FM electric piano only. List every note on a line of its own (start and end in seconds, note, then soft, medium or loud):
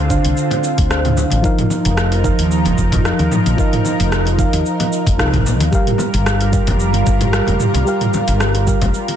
0.00 0.09 D3 medium
0.00 0.10 D4 medium
0.00 0.10 C5 medium
0.00 0.11 F5 loud
0.09 0.25 D3 medium
0.09 0.25 D4 medium
0.09 0.26 C5 medium
0.09 0.26 F5 medium
0.90 1.14 D3 medium
0.90 1.14 D4 medium
0.90 1.14 C5 medium
0.90 1.14 F5 medium
1.42 2.20 F3 loud
1.42 2.21 D#4 medium
1.42 2.22 A#4 medium
1.42 2.22 F5 loud
2.23 2.39 F3 medium
2.23 2.39 D#4 medium
2.23 2.40 A#4 medium
2.23 2.40 F5 medium
3.04 3.28 F3 medium
3.04 3.28 D#4 medium
3.04 3.28 A#4 medium
3.04 3.29 F5 loud
3.57 4.35 F3 medium
3.57 4.35 D#4 medium
3.57 4.36 A#4 medium
3.57 4.37 F5 loud
4.38 4.54 F3 medium
4.38 4.54 D#4 medium
4.38 4.54 A#4 medium
4.38 4.55 F5 medium
5.18 5.42 F3 medium
5.18 5.42 D#4 medium
5.18 5.43 A#4 medium
5.18 5.43 F5 medium
5.71 6.49 G3 medium
5.71 6.50 G4 medium
5.71 6.50 A#4 medium
5.71 6.51 F5 loud
6.52 6.68 G3 medium
6.52 6.68 G4 medium
6.52 6.69 A#4 medium
6.52 6.69 F5 medium
7.32 7.56 G3 medium
7.32 7.57 G4 medium
7.32 7.57 A#4 medium
7.32 7.57 F5 loud
7.85 8.63 G3 medium
7.85 8.64 G4 medium
7.85 8.64 A#4 medium
7.85 8.65 F5 loud
8.66 8.82 G3 medium
8.66 8.83 G4 medium
8.66 8.83 A#4 medium
8.66 8.83 F5 medium